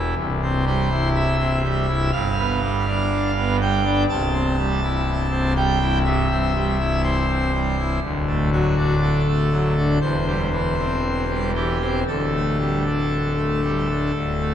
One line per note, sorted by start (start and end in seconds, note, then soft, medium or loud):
0.00 0.14 E1 medium
0.00 0.14 E2 medium
0.00 0.14 E4 medium
0.17 2.11 C1 medium
0.17 2.11 C2 medium
0.42 0.65 C4 medium
0.66 0.89 G3 medium
0.66 1.09 C5 medium
0.91 1.35 E4 medium
1.15 2.11 E5 loud
1.40 1.62 C4 medium
1.64 1.87 G3 medium
1.88 2.10 E4 medium
2.12 4.05 G1 medium
2.12 4.05 G2 medium
2.12 3.56 F5 loud
2.38 2.60 B3 medium
2.63 2.85 G3 medium
2.87 3.31 D4 medium
3.37 3.59 B3 medium
3.61 3.83 G3 medium
3.61 4.03 G5 loud
3.85 4.06 D4 medium
4.09 7.98 C1 medium
4.09 7.99 C2 medium
4.09 5.52 A5 loud
4.34 4.56 C4 medium
4.58 4.80 G3 medium
4.83 5.27 E4 medium
5.31 5.53 C4 medium
5.56 5.78 G3 soft
5.56 5.98 G5 loud
5.81 6.03 E4 medium
6.05 6.27 G2 medium
6.05 7.01 E5 loud
6.31 6.53 C4 medium
6.56 6.78 G3 medium
6.79 7.24 E4 medium
7.03 7.99 C5 medium
7.30 7.51 C4 medium
7.55 7.76 G3 medium
7.79 8.00 E4 medium
8.02 9.98 D1 medium
8.02 9.98 D2 medium
8.27 8.50 A3 medium
8.52 8.75 F#3 soft
8.52 8.95 F#4 medium
8.78 9.22 D4 soft
9.02 9.99 A4 medium
9.27 9.49 A3 soft
9.51 9.74 F#3 soft
9.77 9.98 D4 soft
10.01 12.03 E1 medium
10.01 12.03 E2 medium
10.01 11.51 C5 medium
10.27 10.49 G3 soft
10.52 10.75 E3 soft
10.79 11.24 C4 soft
11.29 11.52 G3 soft
11.55 11.78 E3 soft
11.55 12.00 G4 medium
11.81 12.03 C4 soft
12.07 14.11 D1 soft
12.07 14.11 D2 medium
12.07 14.54 A4 medium
12.33 12.57 A3 soft
12.60 12.83 G3 soft
12.87 13.33 D4 soft
13.37 13.60 A3 soft
13.64 13.87 G3 soft
13.90 14.12 D4 soft
14.15 14.54 D1 medium
14.15 14.54 D2 medium
14.40 14.54 A3 soft